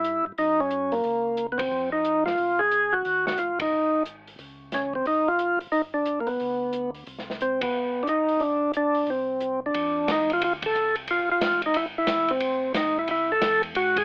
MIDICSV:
0, 0, Header, 1, 4, 480
1, 0, Start_track
1, 0, Tempo, 334262
1, 551, Time_signature, 4, 2, 24, 8
1, 20167, End_track
2, 0, Start_track
2, 0, Title_t, "Tonewheel organ"
2, 0, Program_c, 0, 16
2, 0, Note_on_c, 0, 64, 91
2, 357, Note_off_c, 0, 64, 0
2, 553, Note_on_c, 0, 63, 87
2, 866, Note_on_c, 0, 61, 74
2, 869, Note_off_c, 0, 63, 0
2, 1324, Note_on_c, 0, 58, 76
2, 1356, Note_off_c, 0, 61, 0
2, 2104, Note_off_c, 0, 58, 0
2, 2185, Note_on_c, 0, 59, 60
2, 2268, Note_on_c, 0, 60, 91
2, 2306, Note_off_c, 0, 59, 0
2, 2728, Note_off_c, 0, 60, 0
2, 2763, Note_on_c, 0, 63, 85
2, 3216, Note_off_c, 0, 63, 0
2, 3240, Note_on_c, 0, 65, 97
2, 3722, Note_on_c, 0, 68, 106
2, 3743, Note_off_c, 0, 65, 0
2, 4201, Note_on_c, 0, 66, 86
2, 4224, Note_off_c, 0, 68, 0
2, 4679, Note_off_c, 0, 66, 0
2, 4697, Note_on_c, 0, 66, 78
2, 4858, Note_off_c, 0, 66, 0
2, 4863, Note_on_c, 0, 65, 79
2, 5152, Note_off_c, 0, 65, 0
2, 5190, Note_on_c, 0, 63, 71
2, 5791, Note_off_c, 0, 63, 0
2, 6810, Note_on_c, 0, 61, 76
2, 7087, Note_off_c, 0, 61, 0
2, 7113, Note_on_c, 0, 60, 74
2, 7267, Note_off_c, 0, 60, 0
2, 7283, Note_on_c, 0, 63, 90
2, 7584, Note_on_c, 0, 65, 92
2, 7593, Note_off_c, 0, 63, 0
2, 8028, Note_off_c, 0, 65, 0
2, 8212, Note_on_c, 0, 63, 88
2, 8355, Note_off_c, 0, 63, 0
2, 8528, Note_on_c, 0, 62, 79
2, 8895, Note_off_c, 0, 62, 0
2, 8910, Note_on_c, 0, 58, 52
2, 9004, Note_on_c, 0, 59, 82
2, 9029, Note_off_c, 0, 58, 0
2, 9915, Note_off_c, 0, 59, 0
2, 10652, Note_on_c, 0, 60, 80
2, 10930, Note_off_c, 0, 60, 0
2, 10948, Note_on_c, 0, 59, 77
2, 11530, Note_on_c, 0, 62, 75
2, 11543, Note_off_c, 0, 59, 0
2, 11599, Note_off_c, 0, 62, 0
2, 11614, Note_on_c, 0, 63, 102
2, 12069, Note_on_c, 0, 62, 91
2, 12099, Note_off_c, 0, 63, 0
2, 12519, Note_off_c, 0, 62, 0
2, 12590, Note_on_c, 0, 62, 79
2, 13067, Note_off_c, 0, 62, 0
2, 13072, Note_on_c, 0, 60, 69
2, 13788, Note_off_c, 0, 60, 0
2, 13872, Note_on_c, 0, 62, 85
2, 14520, Note_off_c, 0, 62, 0
2, 14526, Note_on_c, 0, 63, 90
2, 14817, Note_off_c, 0, 63, 0
2, 14838, Note_on_c, 0, 65, 89
2, 14978, Note_off_c, 0, 65, 0
2, 14995, Note_on_c, 0, 65, 93
2, 15125, Note_off_c, 0, 65, 0
2, 15307, Note_on_c, 0, 69, 93
2, 15733, Note_off_c, 0, 69, 0
2, 15948, Note_on_c, 0, 65, 100
2, 16219, Note_off_c, 0, 65, 0
2, 16249, Note_on_c, 0, 65, 104
2, 16683, Note_off_c, 0, 65, 0
2, 16743, Note_on_c, 0, 63, 80
2, 16894, Note_on_c, 0, 64, 92
2, 16900, Note_off_c, 0, 63, 0
2, 17028, Note_off_c, 0, 64, 0
2, 17205, Note_on_c, 0, 64, 91
2, 17672, Note_on_c, 0, 60, 85
2, 17688, Note_off_c, 0, 64, 0
2, 18275, Note_off_c, 0, 60, 0
2, 18333, Note_on_c, 0, 63, 82
2, 18640, Note_off_c, 0, 63, 0
2, 18651, Note_on_c, 0, 64, 87
2, 18798, Note_off_c, 0, 64, 0
2, 18823, Note_on_c, 0, 64, 89
2, 19124, Note_off_c, 0, 64, 0
2, 19126, Note_on_c, 0, 69, 100
2, 19560, Note_off_c, 0, 69, 0
2, 19765, Note_on_c, 0, 66, 102
2, 20070, Note_on_c, 0, 68, 92
2, 20075, Note_off_c, 0, 66, 0
2, 20167, Note_off_c, 0, 68, 0
2, 20167, End_track
3, 0, Start_track
3, 0, Title_t, "Tonewheel organ"
3, 0, Program_c, 1, 16
3, 0, Note_on_c, 1, 43, 75
3, 327, Note_off_c, 1, 43, 0
3, 376, Note_on_c, 1, 43, 38
3, 463, Note_off_c, 1, 43, 0
3, 551, Note_on_c, 1, 42, 79
3, 1463, Note_off_c, 1, 42, 0
3, 1508, Note_on_c, 1, 37, 72
3, 2421, Note_off_c, 1, 37, 0
3, 2462, Note_on_c, 1, 41, 77
3, 3378, Note_off_c, 1, 41, 0
3, 3432, Note_on_c, 1, 36, 76
3, 4343, Note_off_c, 1, 36, 0
3, 4386, Note_on_c, 1, 39, 72
3, 4834, Note_off_c, 1, 39, 0
3, 4871, Note_on_c, 1, 31, 66
3, 5317, Note_off_c, 1, 31, 0
3, 5349, Note_on_c, 1, 32, 75
3, 6262, Note_off_c, 1, 32, 0
3, 6303, Note_on_c, 1, 37, 77
3, 7219, Note_off_c, 1, 37, 0
3, 7269, Note_on_c, 1, 32, 72
3, 8002, Note_off_c, 1, 32, 0
3, 8056, Note_on_c, 1, 32, 38
3, 8143, Note_off_c, 1, 32, 0
3, 8236, Note_on_c, 1, 31, 78
3, 9146, Note_off_c, 1, 31, 0
3, 9199, Note_on_c, 1, 38, 75
3, 10108, Note_off_c, 1, 38, 0
3, 10156, Note_on_c, 1, 36, 83
3, 11068, Note_off_c, 1, 36, 0
3, 11109, Note_on_c, 1, 31, 73
3, 12024, Note_off_c, 1, 31, 0
3, 12056, Note_on_c, 1, 31, 79
3, 12978, Note_off_c, 1, 31, 0
3, 13020, Note_on_c, 1, 36, 74
3, 13940, Note_off_c, 1, 36, 0
3, 14003, Note_on_c, 1, 41, 79
3, 14466, Note_off_c, 1, 41, 0
3, 14467, Note_on_c, 1, 40, 85
3, 14937, Note_off_c, 1, 40, 0
3, 14952, Note_on_c, 1, 38, 77
3, 15420, Note_off_c, 1, 38, 0
3, 15440, Note_on_c, 1, 36, 81
3, 15904, Note_off_c, 1, 36, 0
3, 15916, Note_on_c, 1, 35, 83
3, 16071, Note_off_c, 1, 35, 0
3, 16074, Note_on_c, 1, 33, 51
3, 16231, Note_on_c, 1, 29, 66
3, 16235, Note_off_c, 1, 33, 0
3, 16382, Note_off_c, 1, 29, 0
3, 16385, Note_on_c, 1, 33, 86
3, 16675, Note_off_c, 1, 33, 0
3, 16704, Note_on_c, 1, 33, 40
3, 16790, Note_off_c, 1, 33, 0
3, 16862, Note_on_c, 1, 32, 75
3, 17334, Note_off_c, 1, 32, 0
3, 17345, Note_on_c, 1, 35, 82
3, 17815, Note_off_c, 1, 35, 0
3, 17820, Note_on_c, 1, 33, 83
3, 18293, Note_off_c, 1, 33, 0
3, 18315, Note_on_c, 1, 34, 89
3, 18780, Note_off_c, 1, 34, 0
3, 18792, Note_on_c, 1, 36, 78
3, 19258, Note_off_c, 1, 36, 0
3, 19260, Note_on_c, 1, 40, 90
3, 19732, Note_off_c, 1, 40, 0
3, 19749, Note_on_c, 1, 44, 79
3, 20167, Note_off_c, 1, 44, 0
3, 20167, End_track
4, 0, Start_track
4, 0, Title_t, "Drums"
4, 62, Note_on_c, 9, 42, 45
4, 205, Note_off_c, 9, 42, 0
4, 542, Note_on_c, 9, 46, 39
4, 686, Note_off_c, 9, 46, 0
4, 1014, Note_on_c, 9, 42, 46
4, 1158, Note_off_c, 9, 42, 0
4, 1319, Note_on_c, 9, 46, 33
4, 1463, Note_off_c, 9, 46, 0
4, 1488, Note_on_c, 9, 46, 37
4, 1632, Note_off_c, 9, 46, 0
4, 1969, Note_on_c, 9, 42, 48
4, 2113, Note_off_c, 9, 42, 0
4, 2283, Note_on_c, 9, 36, 72
4, 2285, Note_on_c, 9, 51, 61
4, 2426, Note_off_c, 9, 36, 0
4, 2429, Note_off_c, 9, 51, 0
4, 2938, Note_on_c, 9, 42, 47
4, 3082, Note_off_c, 9, 42, 0
4, 3252, Note_on_c, 9, 38, 34
4, 3396, Note_off_c, 9, 38, 0
4, 3416, Note_on_c, 9, 46, 36
4, 3559, Note_off_c, 9, 46, 0
4, 3898, Note_on_c, 9, 42, 47
4, 4041, Note_off_c, 9, 42, 0
4, 4378, Note_on_c, 9, 46, 39
4, 4522, Note_off_c, 9, 46, 0
4, 4694, Note_on_c, 9, 38, 49
4, 4837, Note_off_c, 9, 38, 0
4, 4850, Note_on_c, 9, 42, 46
4, 4993, Note_off_c, 9, 42, 0
4, 5164, Note_on_c, 9, 51, 62
4, 5165, Note_on_c, 9, 36, 76
4, 5307, Note_off_c, 9, 51, 0
4, 5309, Note_off_c, 9, 36, 0
4, 5823, Note_on_c, 9, 42, 46
4, 5967, Note_off_c, 9, 42, 0
4, 6138, Note_on_c, 9, 46, 32
4, 6282, Note_off_c, 9, 46, 0
4, 6299, Note_on_c, 9, 46, 38
4, 6443, Note_off_c, 9, 46, 0
4, 6778, Note_on_c, 9, 42, 48
4, 6781, Note_on_c, 9, 38, 37
4, 6922, Note_off_c, 9, 42, 0
4, 6925, Note_off_c, 9, 38, 0
4, 7085, Note_on_c, 9, 36, 49
4, 7229, Note_off_c, 9, 36, 0
4, 7260, Note_on_c, 9, 46, 38
4, 7404, Note_off_c, 9, 46, 0
4, 7738, Note_on_c, 9, 42, 47
4, 7881, Note_off_c, 9, 42, 0
4, 8047, Note_on_c, 9, 46, 33
4, 8191, Note_off_c, 9, 46, 0
4, 8220, Note_on_c, 9, 46, 40
4, 8364, Note_off_c, 9, 46, 0
4, 8696, Note_on_c, 9, 42, 49
4, 8840, Note_off_c, 9, 42, 0
4, 9001, Note_on_c, 9, 46, 34
4, 9144, Note_off_c, 9, 46, 0
4, 9185, Note_on_c, 9, 46, 36
4, 9328, Note_off_c, 9, 46, 0
4, 9661, Note_on_c, 9, 42, 48
4, 9805, Note_off_c, 9, 42, 0
4, 9973, Note_on_c, 9, 46, 32
4, 10116, Note_off_c, 9, 46, 0
4, 10147, Note_on_c, 9, 46, 40
4, 10291, Note_off_c, 9, 46, 0
4, 10318, Note_on_c, 9, 38, 28
4, 10461, Note_off_c, 9, 38, 0
4, 10482, Note_on_c, 9, 38, 36
4, 10625, Note_off_c, 9, 38, 0
4, 10635, Note_on_c, 9, 42, 47
4, 10779, Note_off_c, 9, 42, 0
4, 10933, Note_on_c, 9, 36, 72
4, 10933, Note_on_c, 9, 51, 67
4, 11076, Note_off_c, 9, 51, 0
4, 11077, Note_off_c, 9, 36, 0
4, 11591, Note_on_c, 9, 42, 46
4, 11735, Note_off_c, 9, 42, 0
4, 11897, Note_on_c, 9, 46, 34
4, 12040, Note_off_c, 9, 46, 0
4, 12060, Note_on_c, 9, 46, 40
4, 12204, Note_off_c, 9, 46, 0
4, 12544, Note_on_c, 9, 42, 47
4, 12687, Note_off_c, 9, 42, 0
4, 12845, Note_on_c, 9, 46, 34
4, 12988, Note_off_c, 9, 46, 0
4, 13018, Note_on_c, 9, 46, 38
4, 13162, Note_off_c, 9, 46, 0
4, 13505, Note_on_c, 9, 42, 48
4, 13649, Note_off_c, 9, 42, 0
4, 13991, Note_on_c, 9, 51, 58
4, 14134, Note_off_c, 9, 51, 0
4, 14475, Note_on_c, 9, 44, 50
4, 14475, Note_on_c, 9, 51, 64
4, 14478, Note_on_c, 9, 38, 65
4, 14619, Note_off_c, 9, 44, 0
4, 14619, Note_off_c, 9, 51, 0
4, 14621, Note_off_c, 9, 38, 0
4, 14786, Note_on_c, 9, 51, 44
4, 14929, Note_off_c, 9, 51, 0
4, 14957, Note_on_c, 9, 51, 58
4, 15100, Note_off_c, 9, 51, 0
4, 15255, Note_on_c, 9, 51, 65
4, 15256, Note_on_c, 9, 36, 80
4, 15398, Note_off_c, 9, 51, 0
4, 15400, Note_off_c, 9, 36, 0
4, 15432, Note_on_c, 9, 44, 52
4, 15576, Note_off_c, 9, 44, 0
4, 15730, Note_on_c, 9, 51, 42
4, 15874, Note_off_c, 9, 51, 0
4, 15903, Note_on_c, 9, 51, 61
4, 16047, Note_off_c, 9, 51, 0
4, 16388, Note_on_c, 9, 44, 57
4, 16388, Note_on_c, 9, 51, 67
4, 16391, Note_on_c, 9, 38, 66
4, 16531, Note_off_c, 9, 44, 0
4, 16531, Note_off_c, 9, 51, 0
4, 16534, Note_off_c, 9, 38, 0
4, 16686, Note_on_c, 9, 51, 47
4, 16829, Note_off_c, 9, 51, 0
4, 16858, Note_on_c, 9, 51, 59
4, 17002, Note_off_c, 9, 51, 0
4, 17330, Note_on_c, 9, 44, 57
4, 17330, Note_on_c, 9, 51, 62
4, 17333, Note_on_c, 9, 38, 64
4, 17474, Note_off_c, 9, 44, 0
4, 17474, Note_off_c, 9, 51, 0
4, 17477, Note_off_c, 9, 38, 0
4, 17639, Note_on_c, 9, 51, 42
4, 17782, Note_off_c, 9, 51, 0
4, 17811, Note_on_c, 9, 51, 58
4, 17954, Note_off_c, 9, 51, 0
4, 18298, Note_on_c, 9, 44, 62
4, 18298, Note_on_c, 9, 51, 64
4, 18301, Note_on_c, 9, 38, 67
4, 18442, Note_off_c, 9, 44, 0
4, 18442, Note_off_c, 9, 51, 0
4, 18444, Note_off_c, 9, 38, 0
4, 18777, Note_on_c, 9, 51, 52
4, 18920, Note_off_c, 9, 51, 0
4, 19263, Note_on_c, 9, 44, 66
4, 19263, Note_on_c, 9, 51, 65
4, 19266, Note_on_c, 9, 38, 67
4, 19407, Note_off_c, 9, 44, 0
4, 19407, Note_off_c, 9, 51, 0
4, 19409, Note_off_c, 9, 38, 0
4, 19568, Note_on_c, 9, 51, 43
4, 19712, Note_off_c, 9, 51, 0
4, 19745, Note_on_c, 9, 51, 58
4, 19888, Note_off_c, 9, 51, 0
4, 20051, Note_on_c, 9, 36, 80
4, 20053, Note_on_c, 9, 51, 72
4, 20167, Note_off_c, 9, 36, 0
4, 20167, Note_off_c, 9, 51, 0
4, 20167, End_track
0, 0, End_of_file